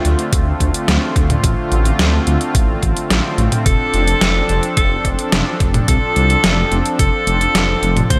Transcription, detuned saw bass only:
0, 0, Header, 1, 2, 480
1, 0, Start_track
1, 0, Key_signature, -1, "major"
1, 0, Tempo, 555556
1, 1242, Time_signature, 4, 2, 24, 8
1, 7080, End_track
2, 0, Start_track
2, 0, Title_t, "Detuned saw bass"
2, 0, Program_c, 0, 39
2, 42, Note_on_c, 0, 38, 87
2, 129, Note_off_c, 0, 38, 0
2, 281, Note_on_c, 0, 38, 103
2, 455, Note_off_c, 0, 38, 0
2, 522, Note_on_c, 0, 38, 99
2, 609, Note_off_c, 0, 38, 0
2, 761, Note_on_c, 0, 38, 101
2, 848, Note_off_c, 0, 38, 0
2, 1002, Note_on_c, 0, 38, 93
2, 1175, Note_off_c, 0, 38, 0
2, 1241, Note_on_c, 0, 33, 91
2, 1328, Note_off_c, 0, 33, 0
2, 1482, Note_on_c, 0, 33, 97
2, 1655, Note_off_c, 0, 33, 0
2, 1721, Note_on_c, 0, 38, 90
2, 1895, Note_off_c, 0, 38, 0
2, 1961, Note_on_c, 0, 38, 91
2, 2048, Note_off_c, 0, 38, 0
2, 2201, Note_on_c, 0, 33, 86
2, 2375, Note_off_c, 0, 33, 0
2, 2441, Note_on_c, 0, 33, 83
2, 2528, Note_off_c, 0, 33, 0
2, 2682, Note_on_c, 0, 33, 87
2, 2769, Note_off_c, 0, 33, 0
2, 2921, Note_on_c, 0, 33, 96
2, 3008, Note_off_c, 0, 33, 0
2, 3161, Note_on_c, 0, 29, 100
2, 3248, Note_off_c, 0, 29, 0
2, 3401, Note_on_c, 0, 29, 89
2, 3575, Note_off_c, 0, 29, 0
2, 3641, Note_on_c, 0, 29, 80
2, 3815, Note_off_c, 0, 29, 0
2, 3883, Note_on_c, 0, 29, 86
2, 3969, Note_off_c, 0, 29, 0
2, 4122, Note_on_c, 0, 29, 104
2, 4295, Note_off_c, 0, 29, 0
2, 4361, Note_on_c, 0, 29, 99
2, 4448, Note_off_c, 0, 29, 0
2, 4601, Note_on_c, 0, 29, 100
2, 4688, Note_off_c, 0, 29, 0
2, 4842, Note_on_c, 0, 29, 99
2, 5015, Note_off_c, 0, 29, 0
2, 5082, Note_on_c, 0, 36, 92
2, 5169, Note_off_c, 0, 36, 0
2, 5323, Note_on_c, 0, 36, 100
2, 5496, Note_off_c, 0, 36, 0
2, 5563, Note_on_c, 0, 29, 93
2, 5736, Note_off_c, 0, 29, 0
2, 5802, Note_on_c, 0, 29, 88
2, 5889, Note_off_c, 0, 29, 0
2, 6042, Note_on_c, 0, 29, 100
2, 6129, Note_off_c, 0, 29, 0
2, 6283, Note_on_c, 0, 29, 81
2, 6456, Note_off_c, 0, 29, 0
2, 6522, Note_on_c, 0, 29, 94
2, 6695, Note_off_c, 0, 29, 0
2, 6761, Note_on_c, 0, 29, 89
2, 6935, Note_off_c, 0, 29, 0
2, 7002, Note_on_c, 0, 38, 102
2, 7080, Note_off_c, 0, 38, 0
2, 7080, End_track
0, 0, End_of_file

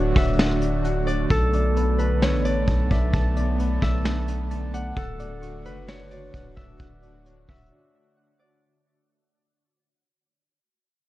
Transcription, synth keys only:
0, 0, Header, 1, 2, 480
1, 0, Start_track
1, 0, Tempo, 458015
1, 1368, Time_signature, 4, 2, 24, 8
1, 11619, End_track
2, 0, Start_track
2, 0, Title_t, "Synth keys"
2, 0, Program_c, 0, 88
2, 0, Note_on_c, 0, 73, 94
2, 0, Note_on_c, 0, 74, 87
2, 0, Note_on_c, 0, 78, 106
2, 171, Note_on_c, 0, 66, 88
2, 411, Note_on_c, 0, 62, 95
2, 871, Note_off_c, 0, 78, 0
2, 883, Note_on_c, 0, 78, 90
2, 1110, Note_off_c, 0, 74, 0
2, 1123, Note_on_c, 0, 74, 88
2, 1365, Note_off_c, 0, 74, 0
2, 1366, Note_off_c, 0, 78, 0
2, 1368, Note_off_c, 0, 73, 0
2, 1369, Note_off_c, 0, 62, 0
2, 1370, Note_off_c, 0, 66, 0
2, 1372, Note_on_c, 0, 81, 110
2, 1615, Note_on_c, 0, 74, 87
2, 1852, Note_on_c, 0, 71, 87
2, 2094, Note_on_c, 0, 69, 88
2, 2325, Note_on_c, 0, 62, 97
2, 2796, Note_off_c, 0, 81, 0
2, 2808, Note_on_c, 0, 81, 102
2, 3040, Note_off_c, 0, 74, 0
2, 3053, Note_on_c, 0, 74, 89
2, 3270, Note_off_c, 0, 81, 0
2, 3283, Note_on_c, 0, 81, 119
2, 3290, Note_off_c, 0, 71, 0
2, 3514, Note_off_c, 0, 74, 0
2, 3526, Note_on_c, 0, 74, 93
2, 3531, Note_off_c, 0, 69, 0
2, 3766, Note_off_c, 0, 62, 0
2, 3773, Note_on_c, 0, 71, 82
2, 4005, Note_on_c, 0, 69, 87
2, 4248, Note_on_c, 0, 62, 95
2, 4714, Note_off_c, 0, 81, 0
2, 4727, Note_on_c, 0, 81, 94
2, 4953, Note_off_c, 0, 74, 0
2, 4966, Note_on_c, 0, 74, 88
2, 5206, Note_off_c, 0, 69, 0
2, 5206, Note_on_c, 0, 78, 118
2, 5207, Note_off_c, 0, 74, 0
2, 5207, Note_off_c, 0, 81, 0
2, 5208, Note_off_c, 0, 62, 0
2, 5210, Note_off_c, 0, 71, 0
2, 5446, Note_on_c, 0, 74, 100
2, 5681, Note_on_c, 0, 85, 87
2, 5931, Note_on_c, 0, 66, 82
2, 6168, Note_on_c, 0, 62, 90
2, 6639, Note_off_c, 0, 78, 0
2, 6652, Note_on_c, 0, 78, 99
2, 6878, Note_off_c, 0, 74, 0
2, 6891, Note_on_c, 0, 74, 89
2, 7109, Note_off_c, 0, 78, 0
2, 7122, Note_on_c, 0, 78, 108
2, 7124, Note_off_c, 0, 85, 0
2, 7348, Note_off_c, 0, 74, 0
2, 7361, Note_on_c, 0, 74, 89
2, 7369, Note_off_c, 0, 66, 0
2, 7608, Note_off_c, 0, 62, 0
2, 7608, Note_on_c, 0, 73, 85
2, 7851, Note_on_c, 0, 66, 87
2, 8091, Note_on_c, 0, 62, 93
2, 8551, Note_off_c, 0, 78, 0
2, 8564, Note_on_c, 0, 78, 89
2, 8790, Note_off_c, 0, 74, 0
2, 8803, Note_on_c, 0, 74, 85
2, 9045, Note_off_c, 0, 74, 0
2, 9046, Note_off_c, 0, 78, 0
2, 9048, Note_off_c, 0, 73, 0
2, 9049, Note_off_c, 0, 62, 0
2, 9049, Note_off_c, 0, 66, 0
2, 11619, End_track
0, 0, End_of_file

